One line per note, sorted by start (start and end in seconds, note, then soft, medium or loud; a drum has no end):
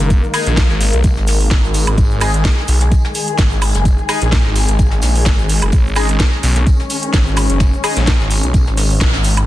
0.00 0.21 F#1 loud
0.00 9.44 D#3 medium
0.00 9.44 G#3 medium
0.00 1.97 A#3 medium
0.00 shaker soft
0.10 kick loud
0.10 closed hi-hat soft
0.10 tambourine medium
0.10 shaker medium
0.24 shaker soft
0.34 0.44 G#3 loud
0.34 0.44 D#4 medium
0.34 0.44 G#4 loud
0.34 snare soft
0.34 open hi-hat loud
0.34 tambourine medium
0.34 high woodblock medium
0.34 shaker loud
0.46 0.68 A#1 loud
0.46 snare soft
0.46 closed hi-hat medium
0.46 shaker soft
0.57 kick loud
0.57 snare loud
0.57 closed hi-hat medium
0.57 tambourine medium
0.57 shaker medium
0.70 0.91 G#1 loud
0.70 snare soft
0.70 shaker soft
0.81 open hi-hat loud
0.81 tambourine medium
0.81 shaker medium
0.93 1.15 B1 loud
0.93 closed hi-hat medium
0.93 shaker soft
1.03 kick loud
1.03 closed hi-hat medium
1.03 tambourine medium
1.03 shaker medium
1.16 1.49 G#1 loud
1.16 snare soft
1.16 shaker soft
1.27 snare medium
1.27 open hi-hat loud
1.27 tambourine medium
1.27 shaker medium
1.40 open hi-hat medium
1.40 shaker soft
1.51 1.85 G#1 loud
1.51 kick loud
1.51 snare loud
1.51 tambourine medium
1.51 shaker medium
1.64 snare soft
1.64 shaker soft
1.74 open hi-hat loud
1.74 tambourine medium
1.74 shaker medium
1.87 1.96 G#1 loud
1.87 closed hi-hat medium
1.87 high woodblock medium
1.87 shaker soft
1.98 2.43 G#1 loud
1.98 5.72 G#4 medium
1.98 kick loud
1.98 closed hi-hat medium
1.98 tambourine medium
1.98 shaker medium
2.11 shaker soft
2.21 2.32 G#3 medium
2.21 2.32 D#4 medium
2.21 2.32 G#4 loud
2.21 open hi-hat loud
2.21 tambourine medium
2.21 high woodblock medium
2.21 shaker loud
2.34 closed hi-hat medium
2.34 shaker soft
2.45 kick loud
2.45 snare loud
2.45 closed hi-hat medium
2.45 tambourine medium
2.45 shaker soft
2.58 snare medium
2.68 2.90 B1 loud
2.68 open hi-hat loud
2.68 tambourine medium
2.68 shaker medium
2.81 snare medium
2.81 closed hi-hat medium
2.81 shaker soft
2.91 kick loud
2.91 closed hi-hat medium
2.91 tambourine medium
2.91 shaker medium
3.05 snare medium
3.05 shaker soft
3.15 open hi-hat loud
3.15 tambourine medium
3.15 shaker medium
3.28 closed hi-hat medium
3.28 shaker soft
3.38 3.73 G#1 medium
3.38 kick loud
3.38 snare loud
3.38 closed hi-hat soft
3.38 tambourine medium
3.38 shaker medium
3.51 shaker soft
3.61 open hi-hat medium
3.61 open hi-hat loud
3.61 high woodblock medium
3.61 shaker medium
3.75 3.96 F#1 loud
3.75 closed hi-hat medium
3.75 closed hi-hat soft
3.75 shaker soft
3.85 kick loud
3.85 closed hi-hat medium
3.85 tambourine medium
3.85 shaker medium
3.98 shaker soft
4.09 4.19 G#3 medium
4.09 4.19 D#4 medium
4.09 4.19 G#4 loud
4.09 snare medium
4.09 open hi-hat loud
4.09 tambourine medium
4.09 high woodblock medium
4.09 shaker medium
4.22 4.43 A#1 medium
4.22 snare soft
4.22 closed hi-hat medium
4.22 shaker soft
4.32 kick loud
4.32 snare loud
4.32 closed hi-hat medium
4.32 tambourine medium
4.32 shaker medium
4.45 4.66 G#1 loud
4.45 snare soft
4.55 open hi-hat loud
4.55 tambourine medium
4.55 shaker medium
4.69 5.01 G#1 medium
4.69 closed hi-hat medium
4.69 shaker soft
4.79 kick loud
4.79 closed hi-hat medium
4.79 tambourine medium
4.79 shaker medium
4.91 snare medium
4.91 shaker soft
5.02 5.24 A#1 loud
5.02 snare medium
5.02 open hi-hat loud
5.02 tambourine medium
5.02 shaker loud
5.15 open hi-hat medium
5.15 shaker soft
5.25 5.60 G#1 loud
5.25 kick loud
5.25 snare loud
5.25 tambourine medium
5.25 shaker medium
5.39 snare soft
5.39 shaker soft
5.49 open hi-hat loud
5.49 tambourine medium
5.49 shaker medium
5.62 5.71 F#1 loud
5.62 closed hi-hat medium
5.62 high woodblock medium
5.62 shaker soft
5.72 6.18 G#1 medium
5.72 9.46 C#4 medium
5.72 kick loud
5.72 closed hi-hat medium
5.72 tambourine medium
5.72 shaker medium
5.87 shaker soft
5.95 6.07 G#3 loud
5.95 6.07 D#4 medium
5.95 6.07 G#4 loud
5.95 open hi-hat loud
5.95 tambourine medium
5.95 high woodblock medium
5.95 shaker medium
6.09 closed hi-hat medium
6.09 shaker soft
6.19 kick loud
6.19 snare loud
6.19 closed hi-hat medium
6.19 tambourine medium
6.19 shaker soft
6.33 snare medium
6.43 6.65 B1 medium
6.43 open hi-hat loud
6.43 tambourine medium
6.43 shaker loud
6.56 snare medium
6.56 closed hi-hat medium
6.56 shaker soft
6.67 kick loud
6.67 closed hi-hat medium
6.67 tambourine loud
6.67 shaker medium
6.80 snare medium
6.80 shaker soft
6.90 open hi-hat loud
6.90 tambourine medium
6.90 shaker loud
7.03 closed hi-hat medium
7.03 shaker soft
7.13 7.48 G#1 loud
7.13 kick loud
7.13 snare loud
7.13 closed hi-hat medium
7.13 tambourine medium
7.13 shaker soft
7.26 shaker soft
7.36 snare loud
7.36 open hi-hat loud
7.36 tambourine medium
7.36 high woodblock medium
7.36 shaker medium
7.50 7.71 F#1 loud
7.50 closed hi-hat soft
7.50 closed hi-hat medium
7.50 shaker soft
7.60 kick loud
7.60 snare loud
7.60 closed hi-hat medium
7.60 tambourine medium
7.60 shaker medium
7.73 shaker soft
7.84 7.94 G#3 loud
7.84 7.94 D#4 medium
7.84 7.94 G#4 loud
7.84 snare medium
7.84 open hi-hat loud
7.84 tambourine medium
7.84 high woodblock medium
7.84 shaker loud
7.97 8.18 A#1 medium
7.97 snare soft
7.97 closed hi-hat medium
7.97 shaker soft
8.07 kick loud
8.07 snare loud
8.07 closed hi-hat medium
8.07 tambourine medium
8.07 shaker medium
8.20 8.41 G#1 loud
8.20 snare soft
8.20 shaker soft
8.30 open hi-hat loud
8.30 tambourine medium
8.30 shaker medium
8.43 8.65 B1 loud
8.43 closed hi-hat medium
8.43 shaker soft
8.54 kick loud
8.54 closed hi-hat medium
8.54 tambourine loud
8.54 shaker medium
8.67 8.99 G#1 loud
8.67 snare soft
8.67 shaker soft
8.77 snare medium
8.77 open hi-hat loud
8.77 tambourine medium
8.77 shaker loud
8.90 open hi-hat medium
8.90 shaker soft
9.00 9.12 A#1 loud
9.00 kick loud
9.00 snare loud
9.00 tambourine medium
9.00 shaker soft
9.13 9.46 G#1 loud
9.13 snare loud
9.13 tambourine medium
9.13 shaker soft
9.24 open hi-hat loud
9.24 tambourine medium
9.24 shaker medium
9.37 snare soft
9.37 closed hi-hat medium
9.37 high woodblock medium
9.37 shaker soft